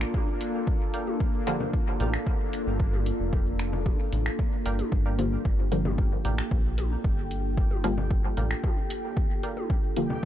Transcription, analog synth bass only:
2.00 A1
2.67 G1
3.20 F1
4.12 A1
4.66 G1
4.92 G1
5.45 G1
6.25 A1
6.51 A#1
7.04 G1
8.37 A1

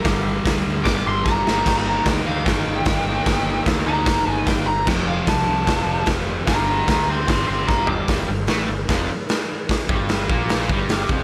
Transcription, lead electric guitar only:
Already playing: A#4
0.84 D6
1.07 C6
1.25 A#5
1.88 A#5
2.08 G5
2.26 F5
2.45 G5
3.87 A#5
4.29 G#5
4.46 G5
4.66 A#5
4.88 G5
5.08 F5
5.28 A5
6.47 G5 A#5
6.67 G5 A#5
6.89 G5 A#5
7.10 G5 C6
7.28 G5 C6
7.48 G5 C6
7.67 A#5 D6
7.90 D6

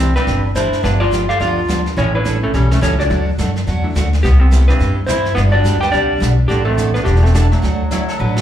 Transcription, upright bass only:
Already playing: C2
0.27 G1
0.84 G1
1.40 D2
1.97 A1
2.54 B1
2.82 C#2
3.10 D2
3.39 F#2
3.67 E2
3.96 D2
4.24 C2
4.80 G2
5.37 G1
5.65 D2
5.93 C2
6.22 B1
6.50 A1
7.06 E1
7.63 D2
8.19 A1

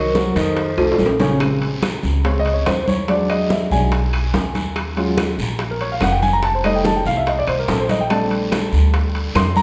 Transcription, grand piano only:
0.15 F#3 F#4 A#4
0.36 D#3 D#4 D#5
0.78 A3 A4 C5
1.20 C#3 C#4 C#5
1.40 C#3 G#3 C4
2.25 C#3 G#3 C4 C#5
2.39 D#5
2.54 C#5
2.67 C5
2.83 C5
2.88 C#5
3.09 F#3 G#3 D4 D5
3.30 D#5
3.51 E5
3.71 F#3 G#3 D4 G#5
4.97 F#3 G#3 C#4 F4
5.71 A#4
5.81 C#5
5.92 F5
6.02 F#5
6.12 G5
6.23 G#5
6.33 A#5
6.44 A5
6.55 C5
6.64 G3 A3 D#4 D#5
6.76 G5
6.86 A5
6.96 G5
7.06 F5
7.17 E5
7.28 D#5
7.39 D5
7.49 C5
7.59 A#4
7.70 A4
7.80 C5
7.90 D#5
8.01 G5
8.10 G3 A3 C4 D4 A5
9.36 C6
9.57 A#5

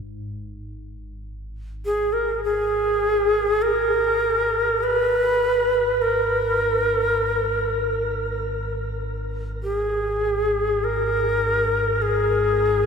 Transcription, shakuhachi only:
1.85 G#4
2.13 A#4
2.44 G#4
3.62 A#4
4.83 B4
6.02 A#4
9.63 G#4
10.84 A#4
12.02 G#4

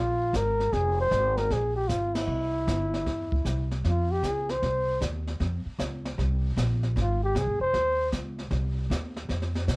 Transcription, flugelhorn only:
Already playing: F4
0.36 A#4
0.73 G#4
1.00 C5
1.37 A#4
1.52 G#4
1.76 G4
1.88 F4
2.14 E4
3.87 F4
4.11 G4
4.26 G#4
4.50 C5
7.01 F4
7.24 G4
7.38 G#4
7.61 C5

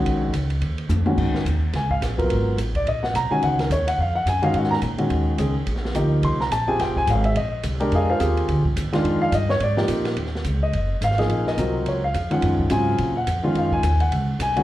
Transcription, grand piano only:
Already playing: D#3 G#3 C#4 F#4
1.06 D#3 G#3 C#4 F#4
1.76 G#5
1.91 F5
2.18 F#3 B3 F4 A#4
2.76 D5
2.88 D#5
3.03 F#5
3.16 A#5
3.31 D#3 G#3 C#4 F#4 G#5
3.44 F#5
3.60 A#4
3.72 C#5
3.88 F#5
4.01 F5
4.15 F#5
4.29 G#5
4.42 D#3 G#3 C#4 F#4 F5
4.56 F#5
4.71 A#5
4.98 D#3 G#3 C#4 F#4
5.38 D#3 G#3 C#4 G#4
5.95 F3 A#3 D#4 G4
6.25 C6
6.41 A#5
6.52 A5
6.68 C4 F4 G4 G#4 G#5
6.80 G5
6.97 G#5
7.10 F5
7.25 E5
7.37 D#5
7.80 G#3 D4 G4 A#4
7.95 G#4 D#5 F5 G#5
8.10 F4 A#4 C5 F5
8.20 C4 F4 G4 G#4
8.93 D#3 G#3 D4 F4
9.22 F5
9.30 D5
9.35 D#5
9.50 C#5
9.63 D5
9.77 F3 A#3 D#4 G4
10.63 D#5
11.04 F5
11.18 F3 A#3 D#4 G#4
11.48 D#5
11.58 F#3 C4 F4 A#4
11.88 C#5
12.04 F5
12.31 D#3 F3 G#3 C#4 F#5
12.71 C#3 F#3 C4 F4 G#5
13.17 F#5
13.43 D#3 G#3 C#4 F4
13.58 F5
13.73 G#5
14.01 F#5
14.42 G#5
14.56 D#3 G#3 C#4 F#4

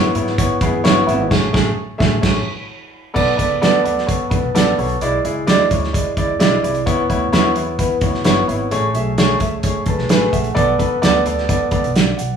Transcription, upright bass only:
Already playing: G#2
0.15 G#2
0.61 F#2
0.74 E2
0.85 G1
1.08 G#1
1.31 A1
1.54 A1
2.00 A1
2.23 A1
3.16 B1
3.39 C#2
3.62 D2
3.85 D2
4.31 C#2
4.43 B1
4.55 A1
4.78 B1
5.01 B1
5.25 C#2
5.47 D2
5.71 D2
6.17 C#2
6.29 D2
6.41 B1
6.63 C2
6.87 C#2
7.10 D2
7.33 E2
7.56 E2
8.01 D2
8.14 C#2
8.26 G1
8.49 G#1
8.72 A1
8.95 B1
9.40 C#2
9.86 C#2
9.99 B1
10.10 A1
10.33 A#1
10.56 B1
10.79 C#2
11.03 D2
11.26 D2
11.72 C#2
11.85 B1
12.19 B1

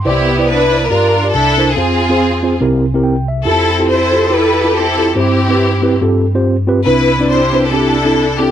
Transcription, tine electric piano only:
Already playing: C6
0.05 C2 C3 E4 B4 C5 D5
0.38 E4 B4 C5 D5
0.71 E4 B4 C5 D5
0.90 G2 F4 G4 A#4 D5
1.24 F4 G4 A#4 D5
1.34 C2 C3
1.58 D4 E4 A#4 C5
1.77 F2 C4 F4 G#4 C5
2.09 C4 F4 G#4 C5
2.43 C4 F4 G#4 C5
2.61 C2 C3 C4 E4 G4 A#4
2.94 C4 E4 G4 A#4
3.03 G5
3.28 E5
3.45 F2 E4 F4 G4 A4
3.79 E4 F4 G4 A4
4.12 E4 F4 G4 C5
4.30 E4 F4 G4 A4
4.64 E4 F4 G4 A4
4.98 E4 F4 G4 A4
5.15 G2 C4 E4 G4 C5
5.49 C4 E4 G4 B4
5.82 C4 E4 G4 B4
6.01 G2 C4 F4 G4 A4
6.35 C4 F4 G4 C5
6.67 C4 F4 G4 B4
6.86 C2 C3 C4 D4 E4 B4
7.19 C4 D4 E4 D5
7.53 C4 D4 E4 B4
7.71 C4 D4 E4 G4
8.05 C4 D4 E4 A4
8.39 C4 D4 E4 A4

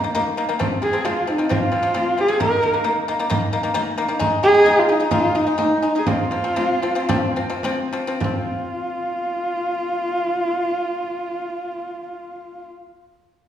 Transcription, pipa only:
0.04 D#3 A#3
0.15 D#3 A#3
0.37 D#3 A#3
0.49 D#3 A#3
0.59 F3 C4
0.82 F3 C4
0.93 F3 C4
1.05 F3 C4
1.27 F3 C4
1.38 F3 C4
1.49 F3 C4
1.72 F3 C4
1.83 F3 C4
1.94 F3 C4
2.17 F3 C4
2.28 F3 C4
2.40 D#3 A#3
2.63 D#3 A#3
2.73 D#3 A#3
2.84 D#3 A#3
3.08 D#3 A#3
3.19 D#3 A#3
3.30 D#3 A#3
3.53 D#3 A#3
3.63 D#3 A#3
3.74 D#3 A#3
3.98 D#3 A#3
4.08 D#3 A#3
4.19 G#3 D#4
4.43 G#3 D#4
4.54 G#3 D#4
4.66 G#3 D#4
4.89 G#3 D#4
5.00 G#3 D#4
5.11 G#3 D#4
5.35 G#3 D#4
5.47 G#3 D#4
5.58 G#3 D#4
5.82 G#3 D#4
5.95 G#3 D#4
6.07 F3 C4
6.31 F3 C4
6.44 F3 C4
6.56 F3 C4
6.82 F3 C4
6.95 F3 C4
7.09 F3 C4
7.36 F3 C4
7.50 F3 C4
7.64 F3 C4
7.93 F3 C4
8.07 F3 C4
8.20 F3 C4

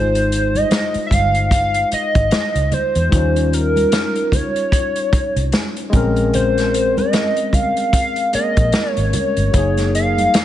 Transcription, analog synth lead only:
Already playing: C5
0.56 D#5
1.07 E5
1.14 F5
1.53 F5
1.94 D#5
2.73 C5
3.47 C5
3.54 A#4
4.34 C#5
6.35 C5
6.98 D#5
7.54 F5
7.95 F5
8.35 D#5
8.90 C#5
9.15 C#5
9.95 F5

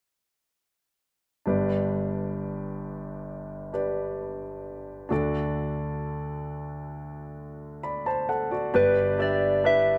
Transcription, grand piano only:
1.46 G1 G2 D4 G4 B4 D5
3.73 D4 G4 B4 D5
5.09 D2 D3 D4 F#4 A4 D5
7.83 D5 B5
8.06 C5 A5
8.29 A4 F#5
8.51 F#4 D5
8.74 G1 G2 D4 G4 B4 D5
9.19 D4 G4 B4 E5
9.64 D4 G4 B4 E5

